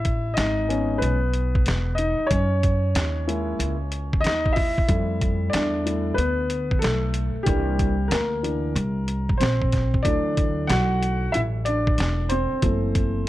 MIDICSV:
0, 0, Header, 1, 5, 480
1, 0, Start_track
1, 0, Tempo, 645161
1, 1715, Time_signature, 4, 2, 24, 8
1, 9884, End_track
2, 0, Start_track
2, 0, Title_t, "Grand piano"
2, 0, Program_c, 0, 0
2, 0, Note_on_c, 0, 64, 67
2, 0, Note_on_c, 0, 76, 97
2, 246, Note_off_c, 0, 64, 0
2, 252, Note_on_c, 0, 75, 91
2, 274, Note_on_c, 0, 63, 71
2, 278, Note_off_c, 0, 76, 0
2, 506, Note_on_c, 0, 56, 54
2, 512, Note_on_c, 0, 59, 48
2, 514, Note_on_c, 0, 61, 63
2, 725, Note_off_c, 0, 63, 0
2, 731, Note_on_c, 0, 71, 82
2, 745, Note_off_c, 0, 59, 0
2, 756, Note_on_c, 0, 59, 60
2, 758, Note_off_c, 0, 75, 0
2, 858, Note_off_c, 0, 56, 0
2, 863, Note_off_c, 0, 61, 0
2, 1433, Note_off_c, 0, 71, 0
2, 1446, Note_off_c, 0, 59, 0
2, 1451, Note_on_c, 0, 75, 87
2, 1478, Note_on_c, 0, 63, 71
2, 1685, Note_off_c, 0, 75, 0
2, 1686, Note_on_c, 0, 73, 97
2, 1700, Note_off_c, 0, 63, 0
2, 1715, Note_on_c, 0, 61, 77
2, 2433, Note_on_c, 0, 56, 55
2, 2436, Note_on_c, 0, 58, 50
2, 2437, Note_on_c, 0, 64, 63
2, 2782, Note_off_c, 0, 56, 0
2, 2784, Note_off_c, 0, 58, 0
2, 2784, Note_off_c, 0, 64, 0
2, 3111, Note_off_c, 0, 73, 0
2, 3125, Note_off_c, 0, 61, 0
2, 3129, Note_on_c, 0, 75, 101
2, 3158, Note_on_c, 0, 63, 70
2, 3367, Note_on_c, 0, 76, 96
2, 3380, Note_off_c, 0, 63, 0
2, 3390, Note_off_c, 0, 75, 0
2, 3394, Note_on_c, 0, 64, 73
2, 3627, Note_off_c, 0, 64, 0
2, 3631, Note_on_c, 0, 55, 55
2, 3633, Note_on_c, 0, 57, 48
2, 3638, Note_on_c, 0, 64, 56
2, 4071, Note_off_c, 0, 76, 0
2, 4090, Note_on_c, 0, 74, 87
2, 4118, Note_on_c, 0, 62, 74
2, 4323, Note_off_c, 0, 55, 0
2, 4324, Note_off_c, 0, 57, 0
2, 4327, Note_off_c, 0, 64, 0
2, 4352, Note_on_c, 0, 55, 47
2, 4356, Note_on_c, 0, 57, 45
2, 4358, Note_on_c, 0, 64, 55
2, 4567, Note_off_c, 0, 62, 0
2, 4569, Note_off_c, 0, 55, 0
2, 4571, Note_on_c, 0, 71, 83
2, 4572, Note_off_c, 0, 57, 0
2, 4573, Note_off_c, 0, 64, 0
2, 4597, Note_off_c, 0, 74, 0
2, 4599, Note_on_c, 0, 59, 68
2, 5033, Note_off_c, 0, 71, 0
2, 5047, Note_off_c, 0, 59, 0
2, 5052, Note_on_c, 0, 69, 87
2, 5078, Note_on_c, 0, 57, 73
2, 5527, Note_off_c, 0, 57, 0
2, 5528, Note_on_c, 0, 67, 91
2, 5546, Note_on_c, 0, 52, 51
2, 5551, Note_on_c, 0, 58, 50
2, 5558, Note_off_c, 0, 69, 0
2, 5558, Note_on_c, 0, 55, 69
2, 5559, Note_on_c, 0, 62, 59
2, 5898, Note_off_c, 0, 52, 0
2, 5901, Note_off_c, 0, 58, 0
2, 5905, Note_off_c, 0, 62, 0
2, 6007, Note_off_c, 0, 55, 0
2, 6011, Note_on_c, 0, 70, 90
2, 6037, Note_off_c, 0, 67, 0
2, 6038, Note_on_c, 0, 58, 71
2, 6264, Note_off_c, 0, 58, 0
2, 6271, Note_on_c, 0, 52, 52
2, 6274, Note_on_c, 0, 62, 54
2, 6275, Note_on_c, 0, 58, 46
2, 6489, Note_off_c, 0, 52, 0
2, 6491, Note_off_c, 0, 58, 0
2, 6491, Note_off_c, 0, 62, 0
2, 6953, Note_off_c, 0, 70, 0
2, 6975, Note_on_c, 0, 72, 90
2, 7003, Note_on_c, 0, 60, 79
2, 7450, Note_off_c, 0, 60, 0
2, 7459, Note_on_c, 0, 74, 100
2, 7472, Note_on_c, 0, 52, 54
2, 7476, Note_on_c, 0, 54, 49
2, 7479, Note_on_c, 0, 57, 57
2, 7480, Note_off_c, 0, 72, 0
2, 7484, Note_on_c, 0, 62, 78
2, 7930, Note_off_c, 0, 62, 0
2, 7942, Note_on_c, 0, 78, 107
2, 7962, Note_off_c, 0, 74, 0
2, 7964, Note_on_c, 0, 66, 84
2, 8410, Note_off_c, 0, 66, 0
2, 8424, Note_on_c, 0, 76, 102
2, 8443, Note_off_c, 0, 78, 0
2, 8446, Note_on_c, 0, 64, 76
2, 8479, Note_off_c, 0, 76, 0
2, 8499, Note_off_c, 0, 64, 0
2, 8669, Note_on_c, 0, 74, 103
2, 8690, Note_on_c, 0, 62, 80
2, 9133, Note_off_c, 0, 62, 0
2, 9145, Note_on_c, 0, 72, 94
2, 9164, Note_on_c, 0, 60, 74
2, 9167, Note_off_c, 0, 74, 0
2, 9364, Note_off_c, 0, 52, 0
2, 9366, Note_off_c, 0, 54, 0
2, 9367, Note_off_c, 0, 57, 0
2, 9392, Note_on_c, 0, 52, 57
2, 9394, Note_off_c, 0, 60, 0
2, 9397, Note_on_c, 0, 57, 48
2, 9406, Note_on_c, 0, 60, 57
2, 9884, Note_off_c, 0, 52, 0
2, 9884, Note_off_c, 0, 57, 0
2, 9884, Note_off_c, 0, 60, 0
2, 9884, Note_off_c, 0, 72, 0
2, 9884, End_track
3, 0, Start_track
3, 0, Title_t, "Upright bass"
3, 0, Program_c, 1, 32
3, 0, Note_on_c, 1, 33, 90
3, 252, Note_off_c, 1, 33, 0
3, 278, Note_on_c, 1, 32, 89
3, 733, Note_off_c, 1, 32, 0
3, 758, Note_on_c, 1, 35, 94
3, 1213, Note_off_c, 1, 35, 0
3, 1235, Note_on_c, 1, 28, 76
3, 1613, Note_off_c, 1, 28, 0
3, 1717, Note_on_c, 1, 42, 100
3, 2172, Note_off_c, 1, 42, 0
3, 2194, Note_on_c, 1, 39, 84
3, 2651, Note_off_c, 1, 39, 0
3, 2673, Note_on_c, 1, 37, 91
3, 3151, Note_off_c, 1, 37, 0
3, 3151, Note_on_c, 1, 39, 97
3, 3531, Note_off_c, 1, 39, 0
3, 3636, Note_on_c, 1, 41, 98
3, 4092, Note_off_c, 1, 41, 0
3, 4118, Note_on_c, 1, 40, 84
3, 4573, Note_off_c, 1, 40, 0
3, 4595, Note_on_c, 1, 38, 90
3, 5051, Note_off_c, 1, 38, 0
3, 5076, Note_on_c, 1, 35, 90
3, 5453, Note_off_c, 1, 35, 0
3, 5556, Note_on_c, 1, 36, 106
3, 6012, Note_off_c, 1, 36, 0
3, 6031, Note_on_c, 1, 38, 90
3, 6489, Note_off_c, 1, 38, 0
3, 6513, Note_on_c, 1, 36, 101
3, 6970, Note_off_c, 1, 36, 0
3, 6994, Note_on_c, 1, 34, 90
3, 7451, Note_off_c, 1, 34, 0
3, 7478, Note_on_c, 1, 38, 88
3, 7932, Note_off_c, 1, 38, 0
3, 7954, Note_on_c, 1, 35, 95
3, 8411, Note_off_c, 1, 35, 0
3, 8435, Note_on_c, 1, 33, 92
3, 8891, Note_off_c, 1, 33, 0
3, 8914, Note_on_c, 1, 28, 83
3, 9293, Note_off_c, 1, 28, 0
3, 9394, Note_on_c, 1, 30, 93
3, 9851, Note_off_c, 1, 30, 0
3, 9884, End_track
4, 0, Start_track
4, 0, Title_t, "Muted upright bass strokes"
4, 1632, Note_on_c, 9, 29, 44
4, 1706, Note_off_c, 9, 29, 0
4, 3556, Note_on_c, 9, 29, 45
4, 3631, Note_off_c, 9, 29, 0
4, 5472, Note_on_c, 9, 29, 42
4, 5546, Note_off_c, 9, 29, 0
4, 9312, Note_on_c, 9, 29, 45
4, 9386, Note_off_c, 9, 29, 0
4, 9884, End_track
5, 0, Start_track
5, 0, Title_t, "Drums"
5, 37, Note_on_c, 9, 42, 76
5, 40, Note_on_c, 9, 36, 86
5, 111, Note_off_c, 9, 42, 0
5, 114, Note_off_c, 9, 36, 0
5, 275, Note_on_c, 9, 42, 88
5, 281, Note_on_c, 9, 38, 118
5, 350, Note_off_c, 9, 42, 0
5, 355, Note_off_c, 9, 38, 0
5, 524, Note_on_c, 9, 42, 65
5, 598, Note_off_c, 9, 42, 0
5, 761, Note_on_c, 9, 42, 77
5, 836, Note_off_c, 9, 42, 0
5, 994, Note_on_c, 9, 42, 57
5, 1068, Note_off_c, 9, 42, 0
5, 1154, Note_on_c, 9, 36, 98
5, 1229, Note_off_c, 9, 36, 0
5, 1234, Note_on_c, 9, 42, 81
5, 1251, Note_on_c, 9, 38, 100
5, 1308, Note_off_c, 9, 42, 0
5, 1325, Note_off_c, 9, 38, 0
5, 1474, Note_on_c, 9, 42, 73
5, 1548, Note_off_c, 9, 42, 0
5, 1716, Note_on_c, 9, 36, 108
5, 1716, Note_on_c, 9, 42, 90
5, 1791, Note_off_c, 9, 36, 0
5, 1791, Note_off_c, 9, 42, 0
5, 1959, Note_on_c, 9, 42, 75
5, 1960, Note_on_c, 9, 36, 86
5, 2034, Note_off_c, 9, 36, 0
5, 2034, Note_off_c, 9, 42, 0
5, 2197, Note_on_c, 9, 42, 88
5, 2202, Note_on_c, 9, 38, 115
5, 2271, Note_off_c, 9, 42, 0
5, 2277, Note_off_c, 9, 38, 0
5, 2447, Note_on_c, 9, 42, 70
5, 2521, Note_off_c, 9, 42, 0
5, 2679, Note_on_c, 9, 42, 86
5, 2753, Note_off_c, 9, 42, 0
5, 2915, Note_on_c, 9, 42, 66
5, 2989, Note_off_c, 9, 42, 0
5, 3074, Note_on_c, 9, 36, 96
5, 3149, Note_off_c, 9, 36, 0
5, 3157, Note_on_c, 9, 42, 85
5, 3174, Note_on_c, 9, 38, 98
5, 3231, Note_off_c, 9, 42, 0
5, 3248, Note_off_c, 9, 38, 0
5, 3315, Note_on_c, 9, 36, 90
5, 3390, Note_off_c, 9, 36, 0
5, 3394, Note_on_c, 9, 46, 50
5, 3400, Note_on_c, 9, 36, 92
5, 3468, Note_off_c, 9, 46, 0
5, 3475, Note_off_c, 9, 36, 0
5, 3556, Note_on_c, 9, 36, 92
5, 3631, Note_off_c, 9, 36, 0
5, 3635, Note_on_c, 9, 42, 87
5, 3636, Note_on_c, 9, 36, 98
5, 3709, Note_off_c, 9, 42, 0
5, 3710, Note_off_c, 9, 36, 0
5, 3880, Note_on_c, 9, 36, 84
5, 3880, Note_on_c, 9, 42, 74
5, 3954, Note_off_c, 9, 42, 0
5, 3955, Note_off_c, 9, 36, 0
5, 4117, Note_on_c, 9, 42, 90
5, 4122, Note_on_c, 9, 38, 114
5, 4191, Note_off_c, 9, 42, 0
5, 4197, Note_off_c, 9, 38, 0
5, 4365, Note_on_c, 9, 42, 70
5, 4440, Note_off_c, 9, 42, 0
5, 4600, Note_on_c, 9, 42, 81
5, 4675, Note_off_c, 9, 42, 0
5, 4835, Note_on_c, 9, 42, 69
5, 4910, Note_off_c, 9, 42, 0
5, 4994, Note_on_c, 9, 36, 94
5, 5069, Note_off_c, 9, 36, 0
5, 5075, Note_on_c, 9, 42, 84
5, 5091, Note_on_c, 9, 38, 100
5, 5149, Note_off_c, 9, 42, 0
5, 5166, Note_off_c, 9, 38, 0
5, 5311, Note_on_c, 9, 42, 71
5, 5386, Note_off_c, 9, 42, 0
5, 5554, Note_on_c, 9, 42, 90
5, 5555, Note_on_c, 9, 36, 105
5, 5628, Note_off_c, 9, 42, 0
5, 5629, Note_off_c, 9, 36, 0
5, 5798, Note_on_c, 9, 36, 87
5, 5798, Note_on_c, 9, 42, 74
5, 5872, Note_off_c, 9, 42, 0
5, 5873, Note_off_c, 9, 36, 0
5, 6036, Note_on_c, 9, 42, 91
5, 6041, Note_on_c, 9, 38, 117
5, 6110, Note_off_c, 9, 42, 0
5, 6115, Note_off_c, 9, 38, 0
5, 6283, Note_on_c, 9, 42, 64
5, 6357, Note_off_c, 9, 42, 0
5, 6519, Note_on_c, 9, 42, 81
5, 6594, Note_off_c, 9, 42, 0
5, 6755, Note_on_c, 9, 42, 66
5, 6829, Note_off_c, 9, 42, 0
5, 6914, Note_on_c, 9, 36, 94
5, 6989, Note_off_c, 9, 36, 0
5, 6998, Note_on_c, 9, 42, 83
5, 7015, Note_on_c, 9, 38, 102
5, 7073, Note_off_c, 9, 42, 0
5, 7090, Note_off_c, 9, 38, 0
5, 7154, Note_on_c, 9, 36, 87
5, 7228, Note_off_c, 9, 36, 0
5, 7235, Note_on_c, 9, 42, 73
5, 7240, Note_on_c, 9, 36, 84
5, 7248, Note_on_c, 9, 38, 36
5, 7309, Note_off_c, 9, 42, 0
5, 7314, Note_off_c, 9, 36, 0
5, 7323, Note_off_c, 9, 38, 0
5, 7396, Note_on_c, 9, 36, 88
5, 7470, Note_off_c, 9, 36, 0
5, 7476, Note_on_c, 9, 36, 110
5, 7478, Note_on_c, 9, 42, 86
5, 7551, Note_off_c, 9, 36, 0
5, 7553, Note_off_c, 9, 42, 0
5, 7718, Note_on_c, 9, 42, 75
5, 7719, Note_on_c, 9, 36, 90
5, 7792, Note_off_c, 9, 42, 0
5, 7794, Note_off_c, 9, 36, 0
5, 7958, Note_on_c, 9, 42, 85
5, 7963, Note_on_c, 9, 38, 111
5, 8032, Note_off_c, 9, 42, 0
5, 8037, Note_off_c, 9, 38, 0
5, 8203, Note_on_c, 9, 42, 67
5, 8278, Note_off_c, 9, 42, 0
5, 8439, Note_on_c, 9, 42, 84
5, 8513, Note_off_c, 9, 42, 0
5, 8674, Note_on_c, 9, 42, 63
5, 8748, Note_off_c, 9, 42, 0
5, 8833, Note_on_c, 9, 36, 101
5, 8907, Note_off_c, 9, 36, 0
5, 8914, Note_on_c, 9, 42, 85
5, 8931, Note_on_c, 9, 38, 101
5, 8988, Note_off_c, 9, 42, 0
5, 9005, Note_off_c, 9, 38, 0
5, 9149, Note_on_c, 9, 42, 74
5, 9223, Note_off_c, 9, 42, 0
5, 9392, Note_on_c, 9, 42, 87
5, 9393, Note_on_c, 9, 36, 97
5, 9467, Note_off_c, 9, 42, 0
5, 9468, Note_off_c, 9, 36, 0
5, 9636, Note_on_c, 9, 42, 74
5, 9637, Note_on_c, 9, 36, 86
5, 9710, Note_off_c, 9, 42, 0
5, 9711, Note_off_c, 9, 36, 0
5, 9884, End_track
0, 0, End_of_file